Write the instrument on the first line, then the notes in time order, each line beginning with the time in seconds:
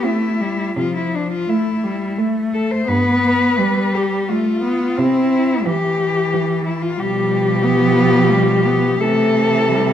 cello
0.04 A3 C4 E4
0.40 G3
0.77 C3 F3 F4
0.97 E4
1.15 D4
1.32 F4
1.48 A3 E4
1.84 G3
2.18 A3
2.53 A4
2.71 C5
2.88 G2 B3 B4
3.58 G3
3.95 G4
4.28 G3 A3 F4
4.63 B3
4.97 C3 C4 E4
5.65 E3 G4
6.34 E3
6.66 E4
6.82 F4
6.98 B2 F3 G3 G4
7.64 B3
8.32 G3
8.66 B3
9.00 C3 E3 A3 A4
9.70 G3